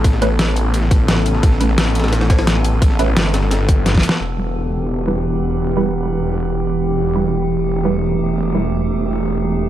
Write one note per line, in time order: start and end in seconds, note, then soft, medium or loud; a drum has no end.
0.00 4.17 C#3 medium
0.00 4.17 B3 medium
0.00 4.17 A4 medium
0.04 1.42 A1 medium
0.04 kick loud
0.04 closed hi-hat medium
0.04 ride medium
0.13 snare medium
0.22 0.28 A3 loud
0.22 0.28 C#4 medium
0.22 0.28 B4 loud
0.22 snare soft
0.22 closed hi-hat medium
0.22 ride medium
0.39 snare loud
0.39 closed hi-hat medium
0.39 ride medium
0.56 closed hi-hat medium
0.56 ride medium
0.74 closed hi-hat medium
0.74 ride medium
0.82 snare medium
0.91 kick loud
0.91 closed hi-hat medium
0.91 ride medium
1.08 snare loud
1.08 closed hi-hat medium
1.08 ride medium
1.26 closed hi-hat medium
1.26 ride medium
1.35 snare soft
1.43 2.81 A1 loud
1.43 kick loud
1.43 closed hi-hat medium
1.43 ride medium
1.52 snare soft
1.60 1.70 A3 medium
1.60 1.70 C#4 medium
1.60 1.70 B4 medium
1.60 snare soft
1.60 closed hi-hat medium
1.60 ride medium
1.69 snare soft
1.78 snare loud
1.78 closed hi-hat medium
1.78 open hi-hat medium
1.87 snare soft
1.95 closed hi-hat medium
1.95 open hi-hat medium
2.00 snare medium
2.00 open hi-hat medium
2.04 snare medium
2.04 snare soft
2.04 open hi-hat medium
2.08 snare medium
2.08 open hi-hat medium
2.13 snare loud
2.13 closed hi-hat medium
2.13 open hi-hat medium
2.21 snare loud
2.21 open hi-hat medium
2.30 kick loud
2.30 snare loud
2.30 closed hi-hat medium
2.30 open hi-hat medium
2.39 snare loud
2.39 open hi-hat medium
2.47 snare loud
2.47 closed hi-hat medium
2.47 ride medium
2.56 snare soft
2.65 closed hi-hat medium
2.65 ride medium
2.82 3.15 A1 loud
2.82 kick loud
2.82 closed hi-hat medium
2.82 ride medium
2.91 snare medium
2.99 3.05 A3 loud
2.99 3.05 C#4 medium
2.99 3.05 B4 loud
2.99 snare soft
2.99 closed hi-hat medium
2.99 ride medium
3.17 4.02 G1 loud
3.17 snare loud
3.17 closed hi-hat medium
3.17 ride medium
3.34 snare loud
3.34 closed hi-hat medium
3.34 ride medium
3.43 snare soft
3.51 snare loud
3.51 closed hi-hat medium
3.51 ride medium
3.69 kick loud
3.69 closed hi-hat loud
3.86 snare medium
3.86 snare soft
3.86 closed hi-hat medium
3.95 kick medium
3.95 snare medium
3.95 ride medium
4.03 closed hi-hat loud
4.03 ride medium
4.09 snare medium
4.12 snare medium
4.21 9.69 E1 medium
4.21 9.69 E3 medium
4.21 6.95 B3 medium
4.21 9.69 G4 medium
4.38 4.48 G3 medium
4.38 4.48 E4 medium
4.38 4.48 B4 medium
5.07 5.17 G3 loud
5.07 5.17 E4 medium
5.07 5.17 B4 loud
5.77 5.83 G3 loud
5.77 5.83 E4 medium
5.77 5.83 B4 loud
6.98 9.69 A3 medium
7.15 7.25 G3 medium
7.15 7.25 E4 medium
7.15 7.25 B4 medium
7.85 7.95 G3 loud
7.85 7.95 E4 medium
7.85 7.95 B4 loud
8.54 8.60 G3 loud
8.54 8.60 E4 medium
8.54 8.60 B4 loud